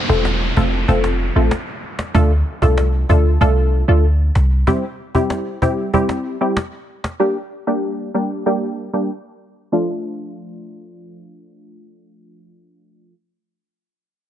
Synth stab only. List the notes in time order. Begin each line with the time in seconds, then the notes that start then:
0.09 A3 C4 F4 A4
0.57 A3 C4 F4 A4
0.88 A3 C4 F4 A4
1.36 A3 C4 F4 A4
2.14 A3 D4 F4 A4
2.62 A3 D4 F4 A4
3.09 A3 D4 F4 A4
3.41 A3 D4 F4 A4
3.88 A3 D4 F4 A4
4.67 G3 C4 E4 G4
5.14 G3 C4 E4 G4
5.62 G3 C4 E4 G4
5.93 G3 C4 E4 G4
6.41 G3 C4 E4 G4
7.20 G3 A#3 D4 G4
7.67 G3 A#3 D4 G4
8.14 G3 A#3 D4 G4
8.46 G3 A#3 D4 G4
8.93 G3 A#3 D4 G4
9.72 F3 A3 D4 F4